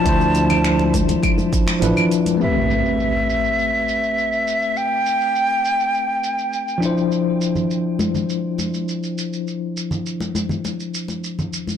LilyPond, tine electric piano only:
\new Staff \with { instrumentName = "Tine electric piano" } { \time 4/4 \key a \minor \tempo 4 = 102 <f d' e' c''>2~ <f d' e' c''>8 r8 <f d' e' b'>4 | <a c' g' b'>1~ | <a c' g' b'>2.~ <a c' g' b'>8 <f d' e' c''>8~ | <f d' e' c''>1~ |
<f d' e' c''>2.~ <f d' e' c''>8 r8 | }